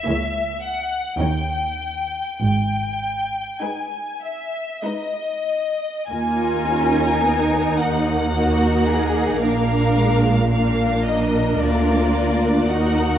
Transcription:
Already playing: violin section E5
0.07 double bass section C#2, cello section C#2, viola section A#3 E4, violin section G#4 C#5
0.63 violin section F#5
1.19 double bass section D#2, cello section D#2, viola section A#3 D#4, violin section D#4 C#5 G5
2.40 double bass section G#1, cello section G#2, violin section G5
3.61 viola section G#3 D#4, violin section D#4 B4 G#5
4.22 violin section E5
4.83 viola section G#3 D#4, violin section D#4 B4 D#5
6.09 double bass section D#2, cello section D#2, viola section A#3 F4, violin section D#4 A#4 G#5
6.68 viola section C#4
7.23 viola section B3 D#4
7.76 viola section A#3, violin section F#5
8.32 viola section D#4, violin section F#4 A#4
8.87 violin section G#4
9.40 double bass section A#1, cello section A#2, viola section A#3 D4, violin section A#4 F5
9.96 viola section G#3
10.50 viola section A#3 D4, violin section A#4 F5
11.04 violin section D#5
11.60 double bass section D2, cello section D2, violin section F4 D5
12.69 cello section D#2, double bass section D#2, viola section D#4, violin section F#4 A#4 F#5

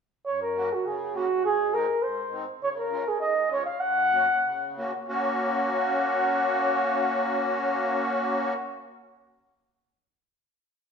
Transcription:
0.25 accordion F#2, flugelhorn C#5
0.42 flugelhorn A#4
0.55 accordion A#3 C#4 F#4
0.73 flugelhorn F#4
0.84 accordion C#3, flugelhorn G#4
1.14 accordion A#3 C#4 F#4, flugelhorn F#4
1.43 accordion G#2, flugelhorn G#4
1.73 accordion G#3 C4 D#4, flugelhorn A#4
2.02 accordion G#2, flugelhorn C5
2.32 accordion G#3 C4 D#4
2.61 accordion C#3, flugelhorn C#5
2.78 flugelhorn A#4
2.91 accordion G#3 C#4 F4
3.08 flugelhorn G#4
3.20 accordion G#2, flugelhorn D#5
3.49 accordion G#3 C#4 F4, flugelhorn C#5
3.65 flugelhorn F5
3.80 accordion F#2, flugelhorn F#5
4.12 accordion A#3 C#4 F#4
4.44 accordion C#3
4.77 accordion A#3 C#4 F#4
5.08 accordion A#3 C#4 F#4, flugelhorn F#5

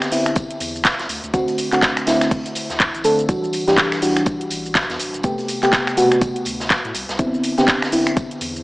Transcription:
0.01 finger snap, snare, shaker
0.11 fm electric piano D3 B3 C4 E4, open hi-hat, shaker
0.26 finger snap, closed hi-hat, shaker
0.36 kick, closed hi-hat, tambourine, shaker
0.51 closed hi-hat
0.60 sub bass E2, open hi-hat, tambourine, shaker
0.76 shaker
0.85 sub bass G1, kick, snare, clap, closed hi-hat, tambourine, shaker
0.99 sub bass G1, snare, closed hi-hat
1.09 sub bass D2, open hi-hat, tambourine, shaker
1.24 sub bass D2, closed hi-hat, shaker
1.34 sub bass D2, fm electric piano D3 A3 C4 F#4, kick, closed hi-hat, tambourine, shaker
1.48 closed hi-hat, shaker
1.58 open hi-hat, tambourine, shaker
1.72 fm electric piano D3 A3 C4 F#4, clap, closed hi-hat, shaker
1.82 kick, snare, clap, closed hi-hat, tambourine, shaker
1.97 finger snap, closed hi-hat, shaker
2.07 fm electric piano D3 A3 C4 E4, snare, open hi-hat, tambourine, shaker
2.21 finger snap, snare, closed hi-hat, shaker
2.31 kick, closed hi-hat, open hi-hat, shaker
2.46 closed hi-hat, shaker
2.55 open hi-hat, tambourine, shaker
2.70 sub bass D2, snare, closed hi-hat, shaker
2.80 kick, clap, closed hi-hat, tambourine, shaker
2.95 sub bass A1, closed hi-hat, shaker
3.04 fm electric piano D3 A3 C4 A4, open hi-hat, tambourine, shaker
3.19 closed hi-hat, shaker
3.29 sub bass E1, fm electric piano E3 G3 D4 F#4, kick, closed hi-hat, tambourine, shaker
3.44 shaker
3.53 open hi-hat, tambourine, shaker
3.68 fm electric piano E3 G3 D4 G4, snare, closed hi-hat, shaker
3.77 kick, snare, clap, closed hi-hat, tambourine, shaker
3.92 finger snap, snare, shaker
4.02 fm electric piano E3 G3 D4 F#4, open hi-hat, shaker
4.16 finger snap, closed hi-hat, shaker
4.26 kick, closed hi-hat, tambourine, shaker
4.41 closed hi-hat
4.50 sub bass A1, open hi-hat, tambourine, shaker
4.66 shaker
4.75 sub bass B1, kick, snare, clap, closed hi-hat, tambourine, shaker
4.90 sub bass E2, snare, closed hi-hat
5.00 sub bass D1, open hi-hat, tambourine, shaker
5.14 sub bass E1, closed hi-hat, shaker
5.23 sub bass A1, fm electric piano C3 A3 B3 G4, kick, closed hi-hat, tambourine, shaker
5.38 closed hi-hat, shaker
5.48 open hi-hat, tambourine, shaker
5.63 fm electric piano C3 A3 B3 G4, clap, closed hi-hat, shaker
5.73 kick, snare, clap, closed hi-hat, tambourine, shaker
5.87 finger snap, closed hi-hat, shaker
5.97 fm electric piano C3 A3 B3 F#4, open hi-hat, tambourine, shaker
6.12 finger snap, closed hi-hat, shaker
6.21 kick, closed hi-hat, tambourine, shaker
6.36 closed hi-hat
6.45 sub bass D2, open hi-hat, tambourine, shaker
6.60 snare, shaker
6.70 sub bass E1, kick, snare, clap, closed hi-hat, tambourine, shaker
6.85 sub bass A2, closed hi-hat
6.95 sub bass C2, open hi-hat, tambourine, shaker
7.09 sub bass C2, snare, closed hi-hat, shaker
7.19 sub bass C2, fm electric piano D3 B3 C4 E4, kick, closed hi-hat, tambourine, shaker
7.34 shaker
7.44 open hi-hat, tambourine, shaker
7.58 fm electric piano D3 B3 C4 G4, snare, closed hi-hat, shaker
7.68 kick, snare, clap, closed hi-hat, tambourine, shaker
7.82 finger snap, snare, shaker
7.92 fm electric piano D3 B3 C4 E4, open hi-hat, shaker
8.07 finger snap, closed hi-hat, shaker
8.17 kick, closed hi-hat, tambourine, shaker
8.31 closed hi-hat
8.41 sub bass E2, open hi-hat, tambourine, shaker
8.56 shaker

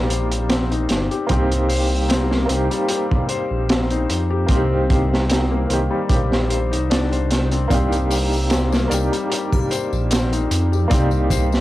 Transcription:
Already playing: detuned saw bass A#1, felt piano G3 A#3 C4 G4 C5, upright piano A#3 D#4 G4 D5
0.09 felt piano C5, closed hi-hat
0.32 closed hi-hat
0.49 felt piano C4, snare, closed hi-hat
0.71 felt piano D#4, closed hi-hat
0.89 detuned saw bass G1, snare, closed hi-hat
1.11 felt piano G4, closed hi-hat
1.27 detuned saw bass C2, upright piano A#3 C4, felt piano C4, kick, closed hi-hat
1.31 upright piano D#4 G4
1.52 closed hi-hat
1.69 felt piano C5, open hi-hat
2.09 felt piano C4, snare, closed hi-hat
2.31 felt piano A#3, snare
2.46 detuned saw bass C2, upright piano A#3 C4, closed hi-hat
2.50 upright piano D#4 G4
2.71 felt piano G3, closed hi-hat
2.88 felt piano G4, closed hi-hat
3.11 kick
3.29 felt piano C5, closed hi-hat
3.51 detuned saw bass A#1
3.69 felt piano C4, snare, closed hi-hat
3.90 felt piano D#4, closed hi-hat
4.10 detuned saw bass F2, closed hi-hat
4.30 felt piano G4
4.46 detuned saw bass C2, upright piano A#3 C4, felt piano C4, kick, closed hi-hat
4.51 upright piano D#4 G4
4.90 felt piano C5, kick, closed hi-hat
5.14 snare
5.29 felt piano C4, snare, closed hi-hat
5.51 felt piano A#3
5.67 detuned saw bass C2, upright piano A#3 C4, closed hi-hat
5.71 upright piano D#3 G4
5.91 felt piano G3
6.09 detuned saw bass A#1, felt piano G4, kick, closed hi-hat
6.32 snare
6.49 felt piano C5, closed hi-hat
6.71 detuned saw bass C2, felt piano D#4, closed hi-hat
6.90 felt piano D4, snare, closed hi-hat
7.12 felt piano C5, closed hi-hat
7.31 snare, closed hi-hat
7.51 felt piano C4, closed hi-hat
7.68 detuned saw bass C2, upright piano A#3 D4, felt piano C4, kick, closed hi-hat, tambourine
7.72 upright piano D#4 G4
7.92 closed hi-hat, tambourine
8.10 felt piano C5, open hi-hat, tambourine
8.33 tambourine
8.50 felt piano C4, snare, closed hi-hat, tambourine
8.72 felt piano A#3, snare, tambourine
8.88 detuned saw bass C2, upright piano A#3 D5, closed hi-hat, tambourine
8.92 upright piano D#4 G4
9.12 felt piano G3, closed hi-hat, tambourine
9.30 felt piano G4, closed hi-hat, tambourine
9.52 kick, triangle
9.70 felt piano C5, closed hi-hat, tambourine
9.93 detuned saw bass A#1, tambourine
10.10 felt piano C4, snare, closed hi-hat, tambourine
10.32 felt piano D#4, closed hi-hat, tambourine
10.51 detuned saw bass F2, closed hi-hat, tambourine
10.72 felt piano G4, tambourine
10.88 detuned saw bass C2, upright piano A#3 D5, felt piano C4, kick, closed hi-hat, tambourine
10.92 upright piano D#4 G4
11.11 tambourine
11.30 felt piano C5, kick, closed hi-hat, tambourine
11.52 snare, tambourine

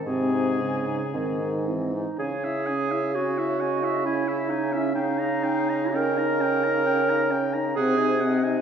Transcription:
0.06 bassoon G#2, french horn C3, clarinet C4, oboe G#4, flute G#5
0.34 clarinet D#4
0.61 french horn C#3, clarinet C4
0.88 clarinet D#4
1.14 bassoon G#2, french horn D#3, clarinet C4
1.41 clarinet D#4
1.67 french horn E3, clarinet C4
1.94 clarinet D#4
2.19 bassoon C#3, french horn C#4, clarinet G#4, oboe G#5
2.44 french horn E4, oboe E5
2.67 french horn C#4, oboe G#5
2.92 french horn E4, oboe E5
3.14 french horn C#4, clarinet F#4, flute C#5, oboe G#5
3.38 french horn E4, oboe E5
3.60 french horn C#4, flute D#5, oboe G#5
3.83 french horn E4, oboe E5
4.05 french horn C#4, clarinet E4, flute E5, oboe G#5
4.28 french horn E4, oboe E5
4.50 french horn C#4, clarinet D#4, oboe G#5
4.72 clarinet C#4, french horn E4, oboe E5
4.95 french horn C#4, clarinet D#4, flute F5, oboe G5
5.18 french horn D#4, oboe A#5
5.43 french horn C#4, oboe G5
5.69 french horn D#4, oboe A#5
5.93 french horn C#4, clarinet A#4, flute D#5, oboe G5
6.18 french horn D#4, oboe A#5
6.41 french horn C#4, oboe G5
6.64 french horn D#4, oboe A#5
6.86 french horn C#4, flute C#5, oboe G5
7.09 french horn D#4, oboe A#5
7.31 french horn C#4, flute A#4, oboe G5
7.54 french horn D#4, oboe A#5
7.76 bassoon C3, french horn C4, clarinet G#4, flute C5, oboe F#5
7.98 french horn D#4, oboe G#5
8.21 french horn C4, flute D#5, oboe F#5
8.44 french horn D#4, oboe G#5

